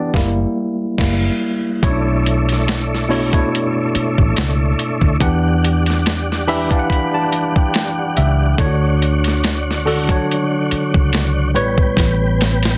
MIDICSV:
0, 0, Header, 1, 6, 480
1, 0, Start_track
1, 0, Key_signature, 2, "minor"
1, 0, Tempo, 845070
1, 1038, Time_signature, 4, 2, 24, 8
1, 7257, End_track
2, 0, Start_track
2, 0, Title_t, "Tine electric piano"
2, 0, Program_c, 0, 4
2, 0, Control_c, 0, 64, 127
2, 0, Note_on_c, 0, 52, 86
2, 0, Note_on_c, 0, 59, 88
2, 0, Note_on_c, 0, 62, 94
2, 0, Note_on_c, 0, 67, 84
2, 0, Note_on_c, 0, 74, 94
2, 77, Note_on_c, 0, 55, 98
2, 80, Note_on_c, 0, 58, 97
2, 82, Note_on_c, 0, 64, 94
2, 85, Control_c, 0, 64, 0
2, 86, Note_off_c, 0, 59, 0
2, 89, Note_off_c, 0, 52, 0
2, 89, Note_off_c, 0, 62, 0
2, 89, Note_off_c, 0, 67, 0
2, 90, Note_off_c, 0, 74, 0
2, 182, Control_c, 0, 64, 127
2, 246, Note_off_c, 0, 55, 0
2, 248, Note_off_c, 0, 58, 0
2, 249, Note_off_c, 0, 64, 0
2, 556, Note_on_c, 0, 55, 76
2, 558, Note_on_c, 0, 58, 82
2, 562, Note_on_c, 0, 64, 76
2, 725, Note_off_c, 0, 55, 0
2, 727, Note_off_c, 0, 58, 0
2, 729, Note_off_c, 0, 64, 0
2, 1034, Note_on_c, 0, 47, 81
2, 1037, Note_on_c, 0, 57, 83
2, 1039, Note_on_c, 0, 61, 62
2, 1042, Note_on_c, 0, 64, 78
2, 1045, Control_c, 0, 64, 0
2, 1047, Note_on_c, 0, 73, 102
2, 1078, Note_on_c, 0, 62, 84
2, 1080, Note_off_c, 0, 61, 0
2, 1134, Control_c, 0, 64, 127
2, 1671, Note_off_c, 0, 47, 0
2, 1673, Note_off_c, 0, 57, 0
2, 1675, Note_off_c, 0, 64, 0
2, 1678, Note_off_c, 0, 73, 0
2, 1694, Note_off_c, 0, 62, 0
2, 1751, Note_on_c, 0, 47, 95
2, 1752, Note_on_c, 0, 57, 78
2, 1757, Note_on_c, 0, 62, 86
2, 1758, Note_on_c, 0, 64, 81
2, 1763, Note_on_c, 0, 73, 91
2, 1872, Note_off_c, 0, 47, 0
2, 1873, Note_off_c, 0, 57, 0
2, 1875, Note_off_c, 0, 62, 0
2, 1875, Note_off_c, 0, 64, 0
2, 1878, Note_off_c, 0, 73, 0
2, 1887, Note_on_c, 0, 47, 80
2, 1890, Note_on_c, 0, 57, 81
2, 1893, Note_on_c, 0, 62, 83
2, 1895, Note_on_c, 0, 64, 85
2, 1898, Note_on_c, 0, 73, 94
2, 2706, Note_off_c, 0, 47, 0
2, 2707, Note_off_c, 0, 57, 0
2, 2709, Note_off_c, 0, 62, 0
2, 2710, Note_off_c, 0, 64, 0
2, 2711, Note_off_c, 0, 73, 0
2, 2954, Note_on_c, 0, 52, 90
2, 2958, Note_on_c, 0, 62, 86
2, 2961, Note_on_c, 0, 67, 84
2, 2964, Control_c, 0, 64, 0
2, 2965, Note_on_c, 0, 78, 102
2, 3065, Control_c, 0, 64, 127
2, 3591, Note_off_c, 0, 52, 0
2, 3594, Note_off_c, 0, 62, 0
2, 3595, Note_off_c, 0, 67, 0
2, 3597, Note_off_c, 0, 78, 0
2, 3676, Note_on_c, 0, 52, 87
2, 3678, Note_on_c, 0, 62, 81
2, 3681, Note_on_c, 0, 67, 87
2, 3681, Note_on_c, 0, 83, 76
2, 3688, Note_on_c, 0, 76, 100
2, 3794, Note_off_c, 0, 52, 0
2, 3796, Note_off_c, 0, 62, 0
2, 3797, Note_off_c, 0, 67, 0
2, 3800, Note_off_c, 0, 76, 0
2, 3806, Note_off_c, 0, 83, 0
2, 3809, Note_on_c, 0, 52, 89
2, 3812, Note_on_c, 0, 62, 82
2, 3813, Note_on_c, 0, 81, 64
2, 3817, Note_on_c, 0, 67, 81
2, 3820, Note_on_c, 0, 77, 77
2, 3849, Note_off_c, 0, 77, 0
2, 3857, Note_on_c, 0, 78, 101
2, 3910, Note_off_c, 0, 81, 0
2, 3917, Note_on_c, 0, 83, 86
2, 4044, Note_off_c, 0, 83, 0
2, 4057, Note_on_c, 0, 81, 77
2, 4279, Note_off_c, 0, 81, 0
2, 4298, Note_on_c, 0, 79, 72
2, 4393, Note_off_c, 0, 79, 0
2, 4400, Note_on_c, 0, 79, 67
2, 4526, Note_off_c, 0, 79, 0
2, 4531, Note_off_c, 0, 78, 0
2, 4538, Note_on_c, 0, 78, 60
2, 4627, Note_off_c, 0, 52, 0
2, 4628, Note_off_c, 0, 62, 0
2, 4631, Note_off_c, 0, 67, 0
2, 4633, Note_off_c, 0, 78, 0
2, 4641, Note_on_c, 0, 76, 76
2, 4863, Note_off_c, 0, 76, 0
2, 4876, Note_on_c, 0, 50, 92
2, 4880, Note_on_c, 0, 62, 84
2, 4883, Note_on_c, 0, 64, 72
2, 4886, Control_c, 0, 64, 0
2, 4886, Note_on_c, 0, 73, 102
2, 4920, Note_on_c, 0, 66, 87
2, 4922, Note_off_c, 0, 64, 0
2, 5001, Control_c, 0, 64, 127
2, 5512, Note_off_c, 0, 50, 0
2, 5515, Note_off_c, 0, 62, 0
2, 5518, Note_off_c, 0, 73, 0
2, 5534, Note_off_c, 0, 66, 0
2, 5596, Note_on_c, 0, 50, 84
2, 5599, Note_on_c, 0, 62, 83
2, 5603, Note_on_c, 0, 66, 77
2, 5607, Note_on_c, 0, 69, 97
2, 5714, Note_off_c, 0, 50, 0
2, 5716, Note_off_c, 0, 62, 0
2, 5718, Note_off_c, 0, 66, 0
2, 5720, Note_off_c, 0, 69, 0
2, 5733, Note_on_c, 0, 54, 95
2, 5738, Note_on_c, 0, 62, 82
2, 5743, Note_on_c, 0, 66, 84
2, 5746, Note_on_c, 0, 73, 96
2, 6549, Note_off_c, 0, 54, 0
2, 6551, Note_off_c, 0, 62, 0
2, 6554, Note_off_c, 0, 66, 0
2, 6554, Note_on_c, 0, 45, 87
2, 6555, Note_off_c, 0, 73, 0
2, 6558, Note_on_c, 0, 55, 84
2, 6561, Note_on_c, 0, 71, 94
2, 6565, Control_c, 0, 64, 0
2, 6566, Note_on_c, 0, 73, 108
2, 6658, Control_c, 0, 64, 127
2, 7257, Note_off_c, 0, 45, 0
2, 7257, Note_off_c, 0, 55, 0
2, 7257, Note_off_c, 0, 71, 0
2, 7257, Note_off_c, 0, 73, 0
2, 7257, End_track
3, 0, Start_track
3, 0, Title_t, "Tonewheel organ"
3, 0, Program_c, 1, 16
3, 1037, Note_on_c, 1, 73, 68
3, 1039, Note_on_c, 1, 62, 72
3, 1040, Note_on_c, 1, 57, 64
3, 1040, Note_on_c, 1, 64, 68
3, 2938, Note_off_c, 1, 73, 0
3, 2940, Note_off_c, 1, 57, 0
3, 2940, Note_off_c, 1, 64, 0
3, 2958, Note_on_c, 1, 55, 65
3, 2959, Note_on_c, 1, 78, 79
3, 4855, Note_off_c, 1, 62, 0
3, 4859, Note_off_c, 1, 55, 0
3, 4873, Note_on_c, 1, 62, 70
3, 4877, Note_on_c, 1, 73, 63
3, 6536, Note_off_c, 1, 78, 0
3, 6539, Note_off_c, 1, 62, 0
3, 6540, Note_off_c, 1, 73, 0
3, 6556, Note_on_c, 1, 47, 70
3, 6556, Note_on_c, 1, 67, 81
3, 6560, Note_on_c, 1, 59, 61
3, 7257, Note_off_c, 1, 47, 0
3, 7257, Note_off_c, 1, 59, 0
3, 7257, Note_off_c, 1, 67, 0
3, 7257, End_track
4, 0, Start_track
4, 0, Title_t, "Fingered electric bass"
4, 0, Program_c, 2, 33
4, 82, Note_on_c, 2, 30, 88
4, 249, Note_off_c, 2, 30, 0
4, 563, Note_on_c, 2, 30, 74
4, 729, Note_off_c, 2, 30, 0
4, 1042, Note_on_c, 2, 35, 108
4, 1873, Note_off_c, 2, 35, 0
4, 2380, Note_on_c, 2, 33, 77
4, 2466, Note_off_c, 2, 33, 0
4, 2487, Note_on_c, 2, 37, 88
4, 2688, Note_off_c, 2, 37, 0
4, 2854, Note_on_c, 2, 38, 78
4, 2943, Note_off_c, 2, 38, 0
4, 2960, Note_on_c, 2, 40, 113
4, 3792, Note_off_c, 2, 40, 0
4, 4646, Note_on_c, 2, 37, 94
4, 4847, Note_off_c, 2, 37, 0
4, 4880, Note_on_c, 2, 38, 119
4, 5712, Note_off_c, 2, 38, 0
4, 6221, Note_on_c, 2, 37, 77
4, 6568, Note_off_c, 2, 37, 0
4, 6568, Note_on_c, 2, 33, 100
4, 6769, Note_off_c, 2, 33, 0
4, 6803, Note_on_c, 2, 33, 114
4, 7257, Note_off_c, 2, 33, 0
4, 7257, End_track
5, 0, Start_track
5, 0, Title_t, "Muted fingered electric bass strokes"
5, 2246, Note_on_c, 9, 29, 54
5, 2303, Note_off_c, 9, 29, 0
5, 6089, Note_on_c, 9, 29, 51
5, 6145, Note_off_c, 9, 29, 0
5, 7257, End_track
6, 0, Start_track
6, 0, Title_t, "Drums"
6, 78, Note_on_c, 9, 36, 100
6, 92, Note_on_c, 9, 38, 91
6, 135, Note_off_c, 9, 36, 0
6, 149, Note_off_c, 9, 38, 0
6, 558, Note_on_c, 9, 49, 73
6, 559, Note_on_c, 9, 36, 88
6, 573, Note_on_c, 9, 38, 97
6, 615, Note_off_c, 9, 36, 0
6, 615, Note_off_c, 9, 49, 0
6, 629, Note_off_c, 9, 38, 0
6, 1038, Note_on_c, 9, 36, 105
6, 1043, Note_on_c, 9, 42, 79
6, 1095, Note_off_c, 9, 36, 0
6, 1100, Note_off_c, 9, 42, 0
6, 1286, Note_on_c, 9, 42, 72
6, 1343, Note_off_c, 9, 42, 0
6, 1413, Note_on_c, 9, 42, 47
6, 1434, Note_on_c, 9, 38, 33
6, 1469, Note_off_c, 9, 42, 0
6, 1491, Note_off_c, 9, 38, 0
6, 1523, Note_on_c, 9, 42, 70
6, 1528, Note_on_c, 9, 38, 120
6, 1580, Note_off_c, 9, 42, 0
6, 1585, Note_off_c, 9, 38, 0
6, 1673, Note_on_c, 9, 38, 30
6, 1730, Note_off_c, 9, 38, 0
6, 1768, Note_on_c, 9, 46, 38
6, 1824, Note_off_c, 9, 46, 0
6, 1892, Note_on_c, 9, 36, 93
6, 1897, Note_on_c, 9, 42, 52
6, 1949, Note_off_c, 9, 36, 0
6, 1953, Note_off_c, 9, 42, 0
6, 2016, Note_on_c, 9, 42, 81
6, 2073, Note_off_c, 9, 42, 0
6, 2243, Note_on_c, 9, 42, 68
6, 2300, Note_off_c, 9, 42, 0
6, 2375, Note_on_c, 9, 36, 84
6, 2432, Note_off_c, 9, 36, 0
6, 2479, Note_on_c, 9, 42, 77
6, 2489, Note_on_c, 9, 38, 115
6, 2536, Note_off_c, 9, 42, 0
6, 2546, Note_off_c, 9, 38, 0
6, 2721, Note_on_c, 9, 42, 62
6, 2778, Note_off_c, 9, 42, 0
6, 2848, Note_on_c, 9, 36, 80
6, 2905, Note_off_c, 9, 36, 0
6, 2956, Note_on_c, 9, 36, 101
6, 2960, Note_on_c, 9, 42, 83
6, 3013, Note_off_c, 9, 36, 0
6, 3017, Note_off_c, 9, 42, 0
6, 3206, Note_on_c, 9, 42, 75
6, 3263, Note_off_c, 9, 42, 0
6, 3330, Note_on_c, 9, 42, 45
6, 3351, Note_on_c, 9, 38, 36
6, 3387, Note_off_c, 9, 42, 0
6, 3408, Note_off_c, 9, 38, 0
6, 3442, Note_on_c, 9, 42, 69
6, 3447, Note_on_c, 9, 38, 104
6, 3499, Note_off_c, 9, 42, 0
6, 3504, Note_off_c, 9, 38, 0
6, 3590, Note_on_c, 9, 38, 29
6, 3647, Note_off_c, 9, 38, 0
6, 3682, Note_on_c, 9, 46, 42
6, 3739, Note_off_c, 9, 46, 0
6, 3809, Note_on_c, 9, 36, 95
6, 3813, Note_on_c, 9, 42, 49
6, 3866, Note_off_c, 9, 36, 0
6, 3870, Note_off_c, 9, 42, 0
6, 3918, Note_on_c, 9, 36, 88
6, 3933, Note_on_c, 9, 42, 72
6, 3975, Note_off_c, 9, 36, 0
6, 3990, Note_off_c, 9, 42, 0
6, 4160, Note_on_c, 9, 42, 82
6, 4217, Note_off_c, 9, 42, 0
6, 4294, Note_on_c, 9, 36, 92
6, 4351, Note_off_c, 9, 36, 0
6, 4396, Note_on_c, 9, 42, 78
6, 4406, Note_on_c, 9, 38, 115
6, 4453, Note_off_c, 9, 42, 0
6, 4462, Note_off_c, 9, 38, 0
6, 4639, Note_on_c, 9, 42, 68
6, 4695, Note_off_c, 9, 42, 0
6, 4875, Note_on_c, 9, 36, 118
6, 4878, Note_on_c, 9, 42, 79
6, 4932, Note_off_c, 9, 36, 0
6, 4935, Note_off_c, 9, 42, 0
6, 5124, Note_on_c, 9, 42, 70
6, 5181, Note_off_c, 9, 42, 0
6, 5249, Note_on_c, 9, 42, 54
6, 5270, Note_on_c, 9, 38, 33
6, 5306, Note_off_c, 9, 42, 0
6, 5327, Note_off_c, 9, 38, 0
6, 5360, Note_on_c, 9, 42, 82
6, 5365, Note_on_c, 9, 38, 108
6, 5417, Note_off_c, 9, 42, 0
6, 5421, Note_off_c, 9, 38, 0
6, 5514, Note_on_c, 9, 38, 34
6, 5570, Note_off_c, 9, 38, 0
6, 5606, Note_on_c, 9, 46, 41
6, 5663, Note_off_c, 9, 46, 0
6, 5731, Note_on_c, 9, 36, 101
6, 5734, Note_on_c, 9, 42, 51
6, 5788, Note_off_c, 9, 36, 0
6, 5791, Note_off_c, 9, 42, 0
6, 5859, Note_on_c, 9, 42, 85
6, 5915, Note_off_c, 9, 42, 0
6, 6085, Note_on_c, 9, 42, 79
6, 6141, Note_off_c, 9, 42, 0
6, 6216, Note_on_c, 9, 36, 90
6, 6273, Note_off_c, 9, 36, 0
6, 6321, Note_on_c, 9, 42, 84
6, 6331, Note_on_c, 9, 38, 105
6, 6378, Note_off_c, 9, 42, 0
6, 6388, Note_off_c, 9, 38, 0
6, 6564, Note_on_c, 9, 42, 64
6, 6621, Note_off_c, 9, 42, 0
6, 6689, Note_on_c, 9, 36, 99
6, 6746, Note_off_c, 9, 36, 0
6, 6798, Note_on_c, 9, 36, 110
6, 6805, Note_on_c, 9, 42, 88
6, 6814, Note_on_c, 9, 38, 64
6, 6855, Note_off_c, 9, 36, 0
6, 6862, Note_off_c, 9, 42, 0
6, 6871, Note_off_c, 9, 38, 0
6, 7048, Note_on_c, 9, 42, 67
6, 7053, Note_on_c, 9, 38, 68
6, 7104, Note_off_c, 9, 42, 0
6, 7110, Note_off_c, 9, 38, 0
6, 7172, Note_on_c, 9, 42, 50
6, 7187, Note_on_c, 9, 38, 62
6, 7229, Note_off_c, 9, 42, 0
6, 7244, Note_off_c, 9, 38, 0
6, 7257, End_track
0, 0, End_of_file